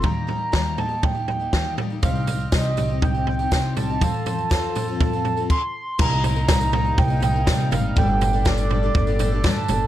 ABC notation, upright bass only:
X:1
M:4/4
L:1/8
Q:1/4=121
K:Cdor
V:1 name="Upright bass" clef=bass
E,,2 E,,4 E,,2 | C,,2 C,,4 C,,2 | F,,2 F,,4 z2 | C,,4 C,,2 C, _A,,, |
G,,,4 G,,,2 G,, G,,, |]